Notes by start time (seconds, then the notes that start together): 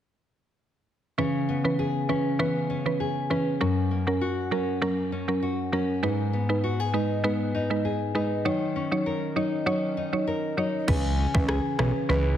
1.18 C#3 E3 C#4 B4
1.49 B3
1.64 E3 C#4 B4
1.79 G#4
2.09 E3 C#4 B4
2.39 E3 B3 C#4 B4
2.70 C#4
2.86 E3 C#4 B4
3.00 G#4
3.30 E3 C#4 B4
3.61 F#2 F#3 C#4 A#4
3.91 A#3
4.07 F#3 C#4 A#4
4.21 F#4
4.51 F#3 C#4 A#4
4.82 F#3 A#3 C#4 A#4
5.12 C#4
5.28 F#3 C#4 A#4
5.42 F#4
5.72 F#3 C#4 A#4
6.03 G#2 G#3 D#4 B4
6.33 B3
6.49 G#3 D#4 B4
6.64 F#4
6.80 G#4
6.93 G#3 D#4 B4
7.24 G#3 B3 D#4 B4
7.55 D#4
7.70 G#3 D#4 B4
7.85 G#4
8.15 G#3 D#4 B4
8.45 D#3 F#3 D#4 C#5
8.76 C#4
8.92 F#3 D#4 C#5
9.06 A#4
9.36 F#3 D#4 C#5
9.66 F#3 C#4 D#4 C#5
9.97 D#4
10.13 F#3 D#4 C#5
10.27 A#4
10.57 F#3 D#4 C#5
10.88 C#2 C#3 E3 C#4 G#4 B4, kick, crash
11.18 C#4
11.34 C#2 E3 C#4 B4, kick
11.49 G#4, cross-stick
11.79 B1 E3 C#4 B4, cross-stick
12.09 C#2 E3 C#4 B4